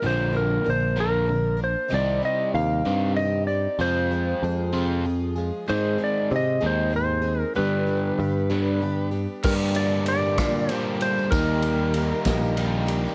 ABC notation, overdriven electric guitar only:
X:1
M:6/8
L:1/8
Q:3/8=64
K:Gphr
V:1 name="Overdriven electric guitar" clef=bass
[B,,D,F,]2 [B,,D,] [B,,D,F,] [B,,D,] z | [C,G,C]2 [C,G,] [C,G,C] [C,G,] z | [F,CF]2 [F,C] [F,CF] [F,C] z | [A,,E,A,]2 [A,,E,] [A,,E,A,] [A,,E,] z |
[G,,D,G,]2 [G,,D,] [G,,D,G,] [G,,D,] z | [G,,D,G,B,DG]4 [G,,D,G,B,DG]2 | [E,G,B,EG]4 [E,G,B,EG]2 |]